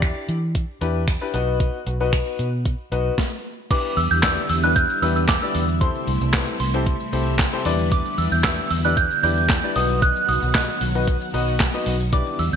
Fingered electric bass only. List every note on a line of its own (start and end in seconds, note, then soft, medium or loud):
0.00 0.11 E2 medium
0.29 0.63 E3 medium
0.81 1.16 E2 medium
1.34 1.68 B1 medium
1.87 2.21 B1 medium
2.39 2.74 B2 medium
2.92 3.09 B1 medium
3.97 4.06 E2 loud
4.11 4.36 E2 medium
4.50 4.84 E2 loud
5.02 5.37 E2 loud
5.55 5.89 E2 loud
6.07 6.17 C2 loud
6.21 6.47 C2 medium
6.60 6.95 C2 loud
7.13 7.47 C2 medium
7.65 8.00 E2 medium
8.18 8.27 E2 loud
8.32 8.57 E2 medium
8.71 9.05 E2 loud
9.23 9.58 E2 loud
9.76 10.11 B1 loud
10.29 10.38 B1 loud
10.42 10.68 B1 medium
10.81 11.16 B1 loud
11.34 11.68 B1 medium
11.86 12.21 B1 medium
12.39 12.48 E2 loud
12.53 12.56 E2 medium